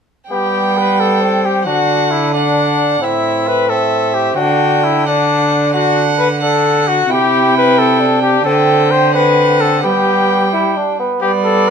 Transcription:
0.30 G3 B3 G4 G5
0.78 B4
1.00 A4
1.21 C4
1.45 G4
1.65 D3 D4 F#4 F#5
2.11 E4
2.34 D4 F#5
3.02 A2 C4 E4 E5
3.48 B4
3.69 C4 A4 E5
4.14 G4
4.36 D3 D4 F#4 G5
4.84 E4
5.06 D4 F#5
5.73 D4 F#4 F#5
6.18 B4
6.42 D4 A4 F#5
6.88 F#4
7.09 C3 E4 G4 G5
7.58 B4
7.79 A4
8.00 D4
8.22 G4
8.45 D3 C4 A4 G5
8.91 C5
9.14 C4 B4 F#5
9.61 A4
9.83 G3 B3 G4 G5
10.53 E4
10.76 D4
10.99 B3
11.21 G3 B3 G4 D5
11.44 A4

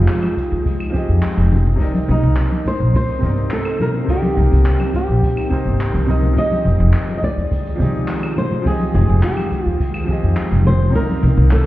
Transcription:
Already playing: F3 G#3 C4 D#4 F4 G4 G#4 D#5 G5
0.08 clap, open hi-hat, shaker
0.22 open hi-hat, high conga, claves
0.37 kick, shaker
0.52 D#2, shaker
0.66 kick, open hi-hat, shaker
0.80 open hi-hat, claves
0.90 F3 C4 G4
0.94 G#4 D#5, kick, shaker
1.09 F2, shaker
1.22 clap, open hi-hat, shaker
1.37 F1, open hi-hat, shaker
1.52 high conga, low conga, shaker
1.66 low conga, shaker
1.75 C3 C4
1.80 A#3 C4 D#4 A#4 D5, kick, open hi-hat, shaker
1.94 open hi-hat, high conga, shaker
2.08 C2 D#4, low conga, shaker
2.23 C2, shaker
2.36 clap, open hi-hat, shaker
2.51 open hi-hat, high conga
2.65 C5, kick, shaker
2.80 A#1, shaker
2.94 C5, kick, open hi-hat, shaker
3.08 open hi-hat
3.19 C3 C4
3.23 G1 D#4 A#4 D5, kick, shaker
3.37 shaker
3.51 A4, clap, open hi-hat, shaker
3.65 open hi-hat, claves, shaker
3.80 A#4, high conga, low conga, shaker
3.94 low conga, shaker
4.04 C3 C4
4.08 D#4 G4 A#4 D5, kick, open hi-hat, shaker
4.22 open hi-hat, high conga, shaker
4.37 C2, low conga, shaker
4.52 C2, open hi-hat, shaker
4.66 clap, open hi-hat, shaker
4.80 open hi-hat, high conga, claves, shaker
4.94 G4, kick, shaker
5.09 A#1, shaker
5.23 kick, open hi-hat, shaker
5.37 open hi-hat, claves, shaker
5.49 C3 C4 D#4 A#4, kick, shaker
5.53 C5
5.65 G1, shaker
5.80 clap, open hi-hat, shaker
5.94 C2, open hi-hat, shaker
6.06 C3 C4 D#4 A#4, high conga, low conga, shaker
6.11 D#5
6.23 low conga, shaker
6.33 D#3 F3 C4, open hi-hat
6.37 G#3 D#4 F4 G4 G#4 D#5, kick, shaker
6.52 open hi-hat, high conga, shaker
6.65 F1, low conga, shaker
6.80 F1, shaker
6.93 clap, open hi-hat, shaker
7.09 open hi-hat, high conga
7.17 D#5
7.23 D5, kick, shaker
7.37 D#2, shaker
7.51 kick, open hi-hat, shaker
7.66 open hi-hat
7.76 F3 C4
7.80 C2 D#4 G4 G#4, kick, shaker
7.95 shaker
8.08 clap, open hi-hat, shaker
8.23 open hi-hat, claves, shaker
8.37 C5, high conga, low conga, shaker
8.51 low conga, shaker
8.62 F3 C4 G4, kick
8.66 G#3 G#4 D#5, open hi-hat, shaker
8.80 open hi-hat, high conga, shaker
8.94 F1 G#4, low conga, shaker
9.09 F1, shaker
9.23 G4, clap, open hi-hat, shaker
9.37 open hi-hat, high conga, claves
9.51 kick, shaker
9.65 D#2 F4, shaker
9.80 kick, open hi-hat, shaker
9.94 open hi-hat, claves
10.04 F3 C4 G4
10.08 G#4 D#5, kick, shaker
10.23 F2, shaker
10.37 clap, open hi-hat, shaker
10.51 F1, open hi-hat, shaker
10.65 C5, high conga, low conga, shaker
10.80 low conga, shaker
10.90 C3 C4 D#4
10.94 C3 A#3 A#4 D5, kick, open hi-hat, shaker
11.09 open hi-hat, high conga, shaker
11.23 C2, low conga, shaker
11.37 C2, shaker
11.51 A4, clap, open hi-hat, shaker

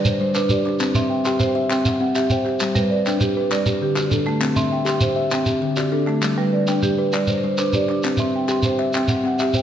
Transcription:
Already playing: G3 D5
0.05 C5, shekere
0.21 G3 C5
0.34 D4 B4, clap, shekere
0.49 G4 D5, shekere
0.66 D4, clap
0.79 C4, clap, shekere
0.95 C4 E5, clap, shekere
1.10 E5 G5
1.25 G4 G5 C6, clap, shekere
1.40 C5, clap, shekere
1.55 E5
1.70 C4 G5, clap, shekere
1.85 F#5, clap, shekere
2.00 C4 F#5
2.15 G4 E5, clap, shekere
2.30 C5 G5, shekere
2.45 G4, clap
2.60 G3, clap, shekere
2.75 G3 B4, shekere
2.90 B4 D5
3.06 D4 G5, clap, shekere
3.20 G4, shekere
3.37 B4
3.51 G3 D5, clap, shekere
3.66 G4, shekere
3.82 D3 G4
3.96 D3 F#4, clap, shekere
4.11 D4 A4, shekere
4.27 A3, clap
4.41 C4, clap, shekere
4.56 C4 E5, shekere
4.71 E5 G5
4.85 G4 G5 C6, clap, shekere
5.01 C5, shekere
5.16 E5
5.31 C4 G5, clap, shekere
5.46 G4, shekere
5.62 D3 G4
5.76 D3 F#4, clap, shekere
5.92 D4 A4
6.07 A3, clap
6.22 G3, clap, shekere
6.38 G3 B4
6.53 B4 D5
6.67 D4 D5 G5, clap, shekere
6.82 G4, shekere
6.98 B4
7.12 G3 D5, clap, shekere
7.27 C5, shekere
7.44 G3 C5
7.57 D4 B4, clap, shekere
7.73 G4 D5, shekere
7.89 D4, clap
8.03 C4, clap, shekere
8.17 C4 E5, shekere
8.36 G5
8.48 G4 G5 C6, clap, shekere
8.63 C5, clap, shekere
8.79 E5, clap
8.93 C4 G5, clap, shekere
9.08 F#5, clap, shekere
9.24 C4 F#5, clap
9.39 G4 E5, clap, shekere
9.53 C5 G5, shekere

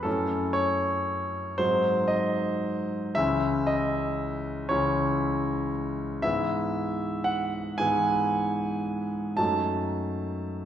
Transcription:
0.03 F#2 A3 C#4 E4 A4
0.53 C#5
1.58 G#2 F#3 C4 D#4 C5
2.08 D#5
3.15 C#2 E3 C#4 E4 E5
3.67 D#5
4.69 C#2 E3 C#4 E4 C#5
6.22 G#2 E3 B3 E4 E5
7.24 F#5
7.78 G#2 E3 B3 E4 G#5
9.37 F#2 F#3 A3 D#4 A5

